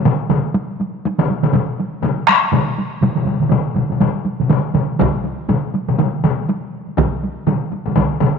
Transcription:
0.05 taiko low-mid loud
0.05 taiko mid medium
0.05 taiko high medium
0.20 taiko high soft
0.29 taiko low-mid loud
0.29 taiko mid medium
0.29 taiko high medium
0.45 taiko high soft
0.54 taiko high medium
0.70 taiko high soft
0.80 taiko high medium
0.95 taiko high soft
1.05 taiko high medium
1.19 taiko low-mid loud
1.19 taiko mid loud
1.19 taiko high soft
1.30 taiko high medium
1.43 taiko low-mid medium
1.43 taiko mid medium
1.53 taiko low-mid medium
1.53 taiko mid loud
1.53 taiko high medium
1.70 taiko high soft
1.80 taiko high medium
1.94 taiko high soft
2.02 taiko low-mid loud
2.02 taiko mid medium
2.02 taiko high medium
2.19 taiko high soft
2.27 taiko rim medium
2.28 taiko rim medium
2.28 taiko high medium
2.44 taiko high soft
2.52 taiko low-mid loud
2.52 taiko mid medium
2.52 taiko high medium
2.69 taiko high soft
2.78 taiko high medium
3.01 taiko low-mid medium
3.01 taiko mid medium
3.01 taiko high medium
3.15 taiko low-mid medium
3.15 taiko mid medium
3.15 taiko high soft
3.25 taiko low-mid medium
3.25 taiko mid medium
3.25 taiko high medium
3.40 taiko low-mid medium
3.40 taiko mid medium
3.40 taiko high soft
3.50 taiko low-mid loud
3.50 taiko mid medium
3.50 taiko high medium
3.67 taiko high soft
3.75 taiko low-mid medium
3.75 taiko mid medium
3.75 taiko high medium
3.90 taiko low-mid medium
3.90 taiko mid medium
3.90 taiko high soft
4.00 taiko low-mid loud
4.00 taiko mid medium
4.00 taiko high medium
4.15 taiko high soft
4.25 taiko high medium
4.40 taiko low-mid medium
4.40 taiko mid medium
4.40 taiko high soft
4.50 taiko low-mid loud
4.50 taiko mid medium
4.50 taiko high medium
4.64 taiko high soft
4.74 taiko low-mid medium
4.74 taiko mid medium
4.74 taiko high medium
4.90 taiko high soft
4.99 taiko medium
4.99 taiko low-mid loud
4.99 taiko mid loud
4.99 taiko high medium
5.14 taiko high soft
5.24 taiko high medium
5.49 taiko low-mid medium
5.49 taiko mid medium
5.49 taiko high medium
5.64 taiko high soft
5.74 taiko high medium
5.88 taiko low-mid medium
5.88 taiko mid medium
5.88 taiko high soft
5.99 taiko low-mid medium
5.99 taiko mid medium
5.99 taiko high medium
6.14 taiko high soft
6.24 taiko low-mid loud
6.24 taiko mid medium
6.24 taiko high medium
6.39 taiko high soft
6.49 taiko high medium
6.64 taiko high soft
6.89 taiko high soft
6.97 taiko medium
6.97 taiko low-mid loud
6.97 taiko mid medium
6.97 taiko high medium
7.13 taiko high soft
7.23 taiko high medium
7.47 taiko low-mid medium
7.47 taiko mid loud
7.47 taiko high medium
7.64 taiko high soft
7.73 taiko high medium
7.86 taiko low-mid medium
7.86 taiko mid medium
7.86 taiko high soft
7.96 taiko medium
7.96 taiko low-mid loud
7.96 taiko mid medium
7.96 taiko high medium
8.13 taiko high soft
8.20 taiko low-mid loud
8.20 taiko mid medium
8.20 taiko high medium

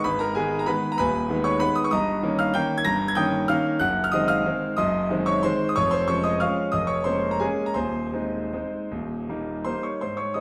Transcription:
0.04 0.35 G#1 medium
0.04 0.35 G#2 medium
0.04 0.20 B4 medium
0.04 0.20 B5 loud
0.19 0.35 A#4 medium
0.19 0.35 A#5 medium
0.35 0.64 D#3 medium
0.35 0.65 G#3 medium
0.35 0.65 B3 medium
0.35 0.58 G#4 medium
0.35 0.59 G#5 medium
0.59 0.67 A#5 medium
0.66 0.96 D#3 medium
0.66 0.96 G#3 medium
0.66 0.96 B3 medium
0.66 0.90 B4 medium
0.66 0.91 B5 loud
0.92 0.99 A#5 medium
0.98 1.29 D#1 medium
0.98 1.29 D#2 medium
0.98 1.42 B4 medium
0.98 1.42 G#5 medium
0.98 1.44 B5 loud
1.29 1.58 D#3 medium
1.29 1.58 G#3 medium
1.29 1.58 B3 medium
1.44 1.60 C#5 medium
1.44 1.60 C#6 loud
1.60 1.89 D#3 medium
1.60 1.89 G#3 medium
1.60 1.89 B3 medium
1.60 1.76 B4 medium
1.60 1.76 B5 loud
1.76 1.84 D#6 loud
1.84 1.92 C#6 medium
1.91 2.22 G1 medium
1.91 2.22 G2 medium
1.91 2.36 D#5 medium
1.91 2.36 A#5 medium
1.91 2.38 D#6 loud
2.22 2.51 D#3 medium
2.22 2.52 A#3 medium
2.22 2.52 C#4 medium
2.39 2.54 F5 medium
2.39 2.55 F6 loud
2.54 2.82 D#3 medium
2.54 2.83 A#3 medium
2.54 2.83 C#4 medium
2.54 2.76 G5 medium
2.54 2.77 G6 loud
2.78 2.85 G#6 loud
2.85 3.16 G1 medium
2.85 3.16 G2 medium
2.85 3.07 A#5 medium
2.85 3.08 A#6 loud
3.08 3.16 G#6 loud
3.15 3.46 D#3 medium
3.15 3.46 A#3 medium
3.15 3.47 C#4 medium
3.15 3.47 G5 medium
3.15 3.47 D#6 medium
3.15 3.49 G6 loud
3.48 3.78 D#3 medium
3.48 3.78 A#3 medium
3.48 3.78 C#4 medium
3.48 3.79 F5 medium
3.48 3.80 F6 loud
3.79 4.11 F#1 medium
3.79 4.11 F#2 medium
3.79 4.03 F#5 medium
3.79 4.04 F#6 loud
4.04 4.12 F6 loud
4.12 4.43 D#3 medium
4.12 4.43 G#3 medium
4.12 4.43 C4 medium
4.12 4.28 D#5 medium
4.12 4.28 D#6 loud
4.28 4.75 F5 medium
4.28 4.78 F6 loud
4.46 4.75 D#3 medium
4.46 4.75 G#3 medium
4.46 4.76 C4 medium
4.77 5.09 F#1 medium
4.77 5.09 F#2 medium
4.77 5.23 D#5 medium
4.77 5.23 C6 medium
4.77 5.26 D#6 loud
5.10 5.40 D#3 medium
5.10 5.41 G#3 medium
5.10 5.41 C4 medium
5.26 5.43 C#5 medium
5.26 5.44 C#6 loud
5.43 5.73 D#3 medium
5.43 5.74 G#3 medium
5.43 5.74 C4 medium
5.43 5.67 C5 medium
5.43 5.68 C6 loud
5.69 5.77 D#6 loud
5.76 6.07 F1 medium
5.76 6.07 F2 medium
5.76 5.91 C#5 medium
5.76 5.92 C#6 loud
5.91 6.07 C5 medium
5.91 6.07 C6 loud
6.08 6.38 F3 medium
6.08 6.38 G#3 medium
6.08 6.38 C#4 medium
6.08 6.24 C#5 medium
6.08 6.24 C#6 loud
6.24 6.40 D#5 medium
6.24 6.40 D#6 medium
6.40 6.70 F3 medium
6.40 6.70 G#3 medium
6.40 6.70 C#4 medium
6.40 6.71 F5 medium
6.40 6.71 C#6 medium
6.40 6.73 F6 medium
6.72 7.05 F1 medium
6.72 7.05 F2 medium
6.72 6.88 D#5 medium
6.72 6.88 D#6 loud
6.87 7.04 C#5 medium
6.87 7.05 C#6 medium
7.04 7.37 G#3 soft
7.04 7.37 A#3 soft
7.04 7.38 C#4 soft
7.04 7.30 C5 medium
7.04 7.31 C6 medium
7.31 7.41 A#5 medium
7.40 7.73 G#3 soft
7.40 7.73 A#3 soft
7.40 7.74 C#4 medium
7.40 7.66 G#4 medium
7.40 7.67 G#5 medium
7.66 7.76 A#5 medium
7.74 8.13 D#1 soft
7.74 8.13 D#2 medium
7.74 9.62 C5 medium
7.74 9.62 G#5 medium
7.74 9.63 C6 medium
8.13 8.49 G#3 soft
8.13 8.49 C4 soft
8.13 8.50 D#4 soft
8.53 8.88 G#3 soft
8.53 8.88 C4 soft
8.53 8.88 D#4 soft
8.91 9.28 D#1 soft
8.91 9.28 D#2 medium
9.29 9.63 G3 soft
9.29 9.63 A#3 soft
9.29 9.63 D#4 soft
9.65 9.98 G3 soft
9.65 9.98 A#3 soft
9.65 9.98 D#4 soft
9.65 9.83 C5 medium
9.65 9.84 C6 medium
9.83 10.00 C#5 soft
9.83 10.01 C#6 medium
10.01 10.34 G#2 soft
10.01 10.17 C5 medium
10.01 10.18 C6 medium
10.17 10.34 C#5 medium
10.17 10.35 C#6 medium
10.34 10.40 G#3 soft
10.34 10.40 C4 soft
10.34 10.40 D#4 soft
10.34 10.40 D#5 medium
10.34 10.40 D#6 medium

